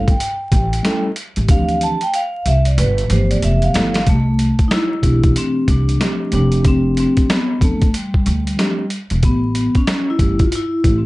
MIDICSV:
0, 0, Header, 1, 5, 480
1, 0, Start_track
1, 0, Key_signature, 0, "major"
1, 0, Tempo, 645161
1, 1107, Time_signature, 4, 2, 24, 8
1, 8227, End_track
2, 0, Start_track
2, 0, Title_t, "Vibraphone"
2, 0, Program_c, 0, 11
2, 75, Note_on_c, 0, 79, 86
2, 755, Note_off_c, 0, 79, 0
2, 1121, Note_on_c, 0, 77, 114
2, 1361, Note_off_c, 0, 77, 0
2, 1363, Note_on_c, 0, 81, 107
2, 1508, Note_off_c, 0, 81, 0
2, 1508, Note_on_c, 0, 79, 99
2, 1596, Note_off_c, 0, 79, 0
2, 1601, Note_on_c, 0, 77, 103
2, 1841, Note_off_c, 0, 77, 0
2, 1842, Note_on_c, 0, 76, 100
2, 1986, Note_on_c, 0, 74, 82
2, 1987, Note_off_c, 0, 76, 0
2, 2075, Note_off_c, 0, 74, 0
2, 2077, Note_on_c, 0, 71, 99
2, 2317, Note_on_c, 0, 72, 87
2, 2319, Note_off_c, 0, 71, 0
2, 2450, Note_off_c, 0, 72, 0
2, 2463, Note_on_c, 0, 74, 83
2, 2545, Note_off_c, 0, 74, 0
2, 2561, Note_on_c, 0, 76, 92
2, 2707, Note_off_c, 0, 76, 0
2, 2708, Note_on_c, 0, 77, 90
2, 3011, Note_off_c, 0, 77, 0
2, 3045, Note_on_c, 0, 57, 92
2, 3482, Note_on_c, 0, 63, 80
2, 3489, Note_off_c, 0, 57, 0
2, 3514, Note_off_c, 0, 63, 0
2, 3520, Note_on_c, 0, 64, 110
2, 3964, Note_off_c, 0, 64, 0
2, 4000, Note_on_c, 0, 60, 94
2, 4217, Note_off_c, 0, 60, 0
2, 4244, Note_on_c, 0, 62, 86
2, 4686, Note_off_c, 0, 62, 0
2, 4726, Note_on_c, 0, 62, 85
2, 4964, Note_off_c, 0, 62, 0
2, 4968, Note_on_c, 0, 60, 92
2, 5196, Note_off_c, 0, 60, 0
2, 5205, Note_on_c, 0, 60, 81
2, 5438, Note_on_c, 0, 59, 87
2, 5443, Note_off_c, 0, 60, 0
2, 5680, Note_off_c, 0, 59, 0
2, 5683, Note_on_c, 0, 57, 82
2, 5899, Note_off_c, 0, 57, 0
2, 5927, Note_on_c, 0, 55, 69
2, 6607, Note_off_c, 0, 55, 0
2, 6879, Note_on_c, 0, 59, 98
2, 7270, Note_on_c, 0, 61, 90
2, 7273, Note_off_c, 0, 59, 0
2, 7510, Note_off_c, 0, 61, 0
2, 7516, Note_on_c, 0, 64, 99
2, 7753, Note_off_c, 0, 64, 0
2, 7754, Note_on_c, 0, 65, 82
2, 7839, Note_off_c, 0, 65, 0
2, 7852, Note_on_c, 0, 64, 106
2, 8167, Note_on_c, 0, 60, 58
2, 8173, Note_off_c, 0, 64, 0
2, 8224, Note_off_c, 0, 60, 0
2, 8227, End_track
3, 0, Start_track
3, 0, Title_t, "Tine electric piano"
3, 0, Program_c, 1, 4
3, 0, Note_on_c, 1, 55, 70
3, 0, Note_on_c, 1, 57, 53
3, 0, Note_on_c, 1, 61, 55
3, 0, Note_on_c, 1, 64, 57
3, 0, Note_on_c, 1, 69, 72
3, 84, Note_off_c, 1, 55, 0
3, 88, Note_off_c, 1, 57, 0
3, 93, Note_off_c, 1, 61, 0
3, 96, Note_off_c, 1, 64, 0
3, 99, Note_off_c, 1, 69, 0
3, 616, Note_on_c, 1, 55, 80
3, 622, Note_on_c, 1, 57, 75
3, 628, Note_on_c, 1, 61, 85
3, 636, Note_on_c, 1, 64, 76
3, 643, Note_on_c, 1, 69, 97
3, 807, Note_off_c, 1, 55, 0
3, 809, Note_off_c, 1, 57, 0
3, 813, Note_off_c, 1, 61, 0
3, 817, Note_off_c, 1, 64, 0
3, 820, Note_off_c, 1, 69, 0
3, 1097, Note_on_c, 1, 52, 53
3, 1104, Note_on_c, 1, 60, 54
3, 1111, Note_on_c, 1, 62, 62
3, 1112, Note_off_c, 1, 52, 0
3, 1120, Note_on_c, 1, 52, 55
3, 1127, Note_on_c, 1, 67, 71
3, 1146, Note_on_c, 1, 53, 71
3, 1465, Note_off_c, 1, 60, 0
3, 1468, Note_off_c, 1, 62, 0
3, 1472, Note_off_c, 1, 52, 0
3, 1476, Note_off_c, 1, 67, 0
3, 1485, Note_off_c, 1, 53, 0
3, 2298, Note_on_c, 1, 53, 81
3, 2303, Note_on_c, 1, 57, 69
3, 2311, Note_on_c, 1, 58, 57
3, 2319, Note_on_c, 1, 52, 71
3, 2325, Note_on_c, 1, 67, 81
3, 2357, Note_on_c, 1, 59, 69
3, 2369, Note_off_c, 1, 58, 0
3, 2766, Note_off_c, 1, 53, 0
3, 2773, Note_off_c, 1, 57, 0
3, 2775, Note_on_c, 1, 53, 66
3, 2782, Note_off_c, 1, 59, 0
3, 2782, Note_on_c, 1, 57, 71
3, 2791, Note_on_c, 1, 59, 67
3, 2797, Note_on_c, 1, 64, 62
3, 2806, Note_on_c, 1, 69, 83
3, 2966, Note_off_c, 1, 53, 0
3, 2970, Note_off_c, 1, 57, 0
3, 2974, Note_off_c, 1, 59, 0
3, 2977, Note_off_c, 1, 64, 0
3, 2982, Note_off_c, 1, 69, 0
3, 2996, Note_off_c, 1, 52, 0
3, 3000, Note_off_c, 1, 67, 0
3, 3732, Note_on_c, 1, 52, 55
3, 3741, Note_on_c, 1, 57, 57
3, 3747, Note_on_c, 1, 60, 57
3, 3755, Note_on_c, 1, 62, 57
3, 3761, Note_on_c, 1, 67, 67
3, 4423, Note_off_c, 1, 52, 0
3, 4427, Note_off_c, 1, 57, 0
3, 4430, Note_off_c, 1, 60, 0
3, 4434, Note_off_c, 1, 62, 0
3, 4437, Note_off_c, 1, 67, 0
3, 4449, Note_on_c, 1, 53, 63
3, 4454, Note_on_c, 1, 57, 57
3, 4464, Note_on_c, 1, 60, 63
3, 4471, Note_on_c, 1, 62, 58
3, 4477, Note_on_c, 1, 67, 67
3, 4684, Note_off_c, 1, 53, 0
3, 4689, Note_off_c, 1, 57, 0
3, 4692, Note_on_c, 1, 53, 67
3, 4697, Note_off_c, 1, 60, 0
3, 4698, Note_on_c, 1, 57, 66
3, 4703, Note_off_c, 1, 62, 0
3, 4706, Note_on_c, 1, 60, 66
3, 4712, Note_off_c, 1, 67, 0
3, 4712, Note_on_c, 1, 62, 64
3, 4721, Note_on_c, 1, 67, 83
3, 5479, Note_off_c, 1, 53, 0
3, 5482, Note_off_c, 1, 57, 0
3, 5486, Note_off_c, 1, 60, 0
3, 5489, Note_off_c, 1, 62, 0
3, 5493, Note_off_c, 1, 67, 0
3, 5652, Note_on_c, 1, 53, 59
3, 5658, Note_on_c, 1, 57, 55
3, 5665, Note_on_c, 1, 60, 53
3, 5674, Note_on_c, 1, 62, 61
3, 5682, Note_on_c, 1, 69, 65
3, 5844, Note_off_c, 1, 53, 0
3, 5848, Note_off_c, 1, 57, 0
3, 5851, Note_off_c, 1, 60, 0
3, 5856, Note_off_c, 1, 62, 0
3, 5859, Note_off_c, 1, 69, 0
3, 6375, Note_on_c, 1, 53, 62
3, 6382, Note_on_c, 1, 57, 66
3, 6391, Note_on_c, 1, 60, 60
3, 6397, Note_on_c, 1, 62, 59
3, 6403, Note_on_c, 1, 67, 72
3, 6566, Note_off_c, 1, 53, 0
3, 6570, Note_off_c, 1, 57, 0
3, 6574, Note_off_c, 1, 60, 0
3, 6577, Note_off_c, 1, 62, 0
3, 6580, Note_off_c, 1, 67, 0
3, 7578, Note_on_c, 1, 52, 62
3, 7584, Note_on_c, 1, 55, 61
3, 7591, Note_on_c, 1, 57, 64
3, 7600, Note_on_c, 1, 61, 62
3, 7604, Note_on_c, 1, 67, 77
3, 7768, Note_off_c, 1, 52, 0
3, 7771, Note_off_c, 1, 55, 0
3, 7774, Note_off_c, 1, 57, 0
3, 7779, Note_off_c, 1, 61, 0
3, 7781, Note_off_c, 1, 67, 0
3, 8227, End_track
4, 0, Start_track
4, 0, Title_t, "Upright bass"
4, 0, Program_c, 2, 32
4, 0, Note_on_c, 2, 31, 81
4, 103, Note_off_c, 2, 31, 0
4, 386, Note_on_c, 2, 33, 105
4, 586, Note_off_c, 2, 33, 0
4, 1019, Note_on_c, 2, 33, 90
4, 1094, Note_off_c, 2, 33, 0
4, 1105, Note_on_c, 2, 38, 93
4, 1428, Note_off_c, 2, 38, 0
4, 1828, Note_on_c, 2, 36, 90
4, 2066, Note_on_c, 2, 31, 120
4, 2077, Note_off_c, 2, 36, 0
4, 2266, Note_off_c, 2, 31, 0
4, 2306, Note_on_c, 2, 31, 108
4, 2506, Note_off_c, 2, 31, 0
4, 2547, Note_on_c, 2, 29, 106
4, 2746, Note_off_c, 2, 29, 0
4, 2791, Note_on_c, 2, 31, 88
4, 2988, Note_off_c, 2, 31, 0
4, 3029, Note_on_c, 2, 36, 94
4, 3350, Note_off_c, 2, 36, 0
4, 3743, Note_on_c, 2, 35, 70
4, 3944, Note_off_c, 2, 35, 0
4, 4225, Note_on_c, 2, 36, 90
4, 4425, Note_off_c, 2, 36, 0
4, 4709, Note_on_c, 2, 29, 98
4, 5229, Note_off_c, 2, 29, 0
4, 5665, Note_on_c, 2, 40, 75
4, 5865, Note_off_c, 2, 40, 0
4, 6150, Note_on_c, 2, 38, 95
4, 6348, Note_off_c, 2, 38, 0
4, 6778, Note_on_c, 2, 28, 86
4, 6853, Note_off_c, 2, 28, 0
4, 6867, Note_on_c, 2, 33, 98
4, 7189, Note_off_c, 2, 33, 0
4, 7583, Note_on_c, 2, 31, 88
4, 7783, Note_off_c, 2, 31, 0
4, 8069, Note_on_c, 2, 33, 90
4, 8227, Note_off_c, 2, 33, 0
4, 8227, End_track
5, 0, Start_track
5, 0, Title_t, "Drums"
5, 57, Note_on_c, 9, 36, 108
5, 58, Note_on_c, 9, 42, 53
5, 131, Note_off_c, 9, 36, 0
5, 133, Note_off_c, 9, 42, 0
5, 150, Note_on_c, 9, 42, 102
5, 225, Note_off_c, 9, 42, 0
5, 385, Note_on_c, 9, 36, 90
5, 385, Note_on_c, 9, 42, 83
5, 459, Note_off_c, 9, 36, 0
5, 459, Note_off_c, 9, 42, 0
5, 544, Note_on_c, 9, 42, 53
5, 618, Note_off_c, 9, 42, 0
5, 630, Note_on_c, 9, 38, 93
5, 630, Note_on_c, 9, 42, 76
5, 704, Note_off_c, 9, 38, 0
5, 704, Note_off_c, 9, 42, 0
5, 863, Note_on_c, 9, 42, 76
5, 938, Note_off_c, 9, 42, 0
5, 1013, Note_on_c, 9, 42, 45
5, 1087, Note_off_c, 9, 42, 0
5, 1104, Note_on_c, 9, 42, 86
5, 1106, Note_on_c, 9, 36, 127
5, 1179, Note_off_c, 9, 42, 0
5, 1180, Note_off_c, 9, 36, 0
5, 1253, Note_on_c, 9, 42, 33
5, 1328, Note_off_c, 9, 42, 0
5, 1347, Note_on_c, 9, 42, 78
5, 1421, Note_off_c, 9, 42, 0
5, 1495, Note_on_c, 9, 42, 45
5, 1569, Note_off_c, 9, 42, 0
5, 1589, Note_on_c, 9, 42, 76
5, 1663, Note_off_c, 9, 42, 0
5, 1828, Note_on_c, 9, 42, 81
5, 1902, Note_off_c, 9, 42, 0
5, 1974, Note_on_c, 9, 42, 55
5, 2049, Note_off_c, 9, 42, 0
5, 2068, Note_on_c, 9, 42, 106
5, 2142, Note_off_c, 9, 42, 0
5, 2218, Note_on_c, 9, 42, 36
5, 2292, Note_off_c, 9, 42, 0
5, 2305, Note_on_c, 9, 42, 82
5, 2379, Note_off_c, 9, 42, 0
5, 2461, Note_on_c, 9, 42, 52
5, 2535, Note_off_c, 9, 42, 0
5, 2548, Note_on_c, 9, 42, 85
5, 2622, Note_off_c, 9, 42, 0
5, 2693, Note_on_c, 9, 42, 35
5, 2767, Note_off_c, 9, 42, 0
5, 2785, Note_on_c, 9, 42, 78
5, 2793, Note_on_c, 9, 38, 106
5, 2859, Note_off_c, 9, 42, 0
5, 2868, Note_off_c, 9, 38, 0
5, 2934, Note_on_c, 9, 42, 51
5, 2942, Note_on_c, 9, 38, 104
5, 3008, Note_off_c, 9, 42, 0
5, 3016, Note_off_c, 9, 38, 0
5, 3025, Note_on_c, 9, 42, 80
5, 3027, Note_on_c, 9, 36, 113
5, 3099, Note_off_c, 9, 42, 0
5, 3101, Note_off_c, 9, 36, 0
5, 3266, Note_on_c, 9, 42, 67
5, 3340, Note_off_c, 9, 42, 0
5, 3414, Note_on_c, 9, 42, 44
5, 3416, Note_on_c, 9, 36, 78
5, 3488, Note_off_c, 9, 42, 0
5, 3490, Note_off_c, 9, 36, 0
5, 3504, Note_on_c, 9, 42, 57
5, 3506, Note_on_c, 9, 38, 102
5, 3579, Note_off_c, 9, 42, 0
5, 3580, Note_off_c, 9, 38, 0
5, 3742, Note_on_c, 9, 36, 85
5, 3744, Note_on_c, 9, 42, 79
5, 3816, Note_off_c, 9, 36, 0
5, 3819, Note_off_c, 9, 42, 0
5, 3894, Note_on_c, 9, 42, 48
5, 3896, Note_on_c, 9, 36, 107
5, 3969, Note_off_c, 9, 42, 0
5, 3970, Note_off_c, 9, 36, 0
5, 3987, Note_on_c, 9, 42, 98
5, 4061, Note_off_c, 9, 42, 0
5, 4225, Note_on_c, 9, 36, 80
5, 4225, Note_on_c, 9, 42, 73
5, 4299, Note_off_c, 9, 36, 0
5, 4300, Note_off_c, 9, 42, 0
5, 4381, Note_on_c, 9, 42, 50
5, 4455, Note_off_c, 9, 42, 0
5, 4470, Note_on_c, 9, 38, 87
5, 4470, Note_on_c, 9, 42, 75
5, 4544, Note_off_c, 9, 38, 0
5, 4544, Note_off_c, 9, 42, 0
5, 4701, Note_on_c, 9, 42, 63
5, 4776, Note_off_c, 9, 42, 0
5, 4849, Note_on_c, 9, 42, 48
5, 4923, Note_off_c, 9, 42, 0
5, 4944, Note_on_c, 9, 42, 74
5, 4947, Note_on_c, 9, 36, 110
5, 5019, Note_off_c, 9, 42, 0
5, 5021, Note_off_c, 9, 36, 0
5, 5186, Note_on_c, 9, 42, 68
5, 5260, Note_off_c, 9, 42, 0
5, 5332, Note_on_c, 9, 42, 41
5, 5336, Note_on_c, 9, 36, 79
5, 5407, Note_off_c, 9, 42, 0
5, 5411, Note_off_c, 9, 36, 0
5, 5429, Note_on_c, 9, 42, 67
5, 5430, Note_on_c, 9, 38, 105
5, 5503, Note_off_c, 9, 42, 0
5, 5505, Note_off_c, 9, 38, 0
5, 5663, Note_on_c, 9, 36, 91
5, 5667, Note_on_c, 9, 42, 73
5, 5738, Note_off_c, 9, 36, 0
5, 5741, Note_off_c, 9, 42, 0
5, 5815, Note_on_c, 9, 42, 48
5, 5817, Note_on_c, 9, 36, 99
5, 5889, Note_off_c, 9, 42, 0
5, 5891, Note_off_c, 9, 36, 0
5, 5908, Note_on_c, 9, 42, 93
5, 5983, Note_off_c, 9, 42, 0
5, 6058, Note_on_c, 9, 36, 78
5, 6132, Note_off_c, 9, 36, 0
5, 6146, Note_on_c, 9, 42, 71
5, 6220, Note_off_c, 9, 42, 0
5, 6303, Note_on_c, 9, 42, 52
5, 6377, Note_off_c, 9, 42, 0
5, 6390, Note_on_c, 9, 38, 90
5, 6390, Note_on_c, 9, 42, 70
5, 6465, Note_off_c, 9, 38, 0
5, 6465, Note_off_c, 9, 42, 0
5, 6623, Note_on_c, 9, 42, 67
5, 6697, Note_off_c, 9, 42, 0
5, 6771, Note_on_c, 9, 42, 44
5, 6846, Note_off_c, 9, 42, 0
5, 6865, Note_on_c, 9, 42, 83
5, 6867, Note_on_c, 9, 36, 114
5, 6939, Note_off_c, 9, 42, 0
5, 6941, Note_off_c, 9, 36, 0
5, 7105, Note_on_c, 9, 42, 74
5, 7179, Note_off_c, 9, 42, 0
5, 7252, Note_on_c, 9, 42, 36
5, 7256, Note_on_c, 9, 36, 77
5, 7327, Note_off_c, 9, 42, 0
5, 7331, Note_off_c, 9, 36, 0
5, 7346, Note_on_c, 9, 42, 64
5, 7347, Note_on_c, 9, 38, 101
5, 7420, Note_off_c, 9, 42, 0
5, 7422, Note_off_c, 9, 38, 0
5, 7583, Note_on_c, 9, 36, 90
5, 7584, Note_on_c, 9, 42, 71
5, 7657, Note_off_c, 9, 36, 0
5, 7659, Note_off_c, 9, 42, 0
5, 7733, Note_on_c, 9, 42, 49
5, 7736, Note_on_c, 9, 36, 93
5, 7807, Note_off_c, 9, 42, 0
5, 7810, Note_off_c, 9, 36, 0
5, 7826, Note_on_c, 9, 42, 93
5, 7901, Note_off_c, 9, 42, 0
5, 8066, Note_on_c, 9, 36, 81
5, 8067, Note_on_c, 9, 42, 67
5, 8140, Note_off_c, 9, 36, 0
5, 8141, Note_off_c, 9, 42, 0
5, 8227, End_track
0, 0, End_of_file